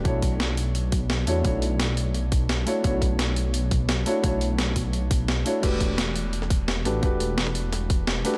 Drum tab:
CC |----------------|----------------|----------------|----------------|
HH |x-x-x-x-x-x-x-x-|x-x-x-x-x-x-x-x-|x-x-x-x-x-x-x-x-|x-x-x-x-x-x-x-x-|
SD |----o-------o---|----o-------o---|----o-------o---|----o-------o---|
BD |o-o-------o-----|o---------o-----|o-o-------o-----|o-----o---o-----|

CC |x---------------|----------------|
HH |x-x-x-x-x-x-x-x-|x-x-x-x-x-x-x-x-|
SD |----o----o--o-o-|----oo--o---o--o|
BD |o-o-------o-----|o---------o-----|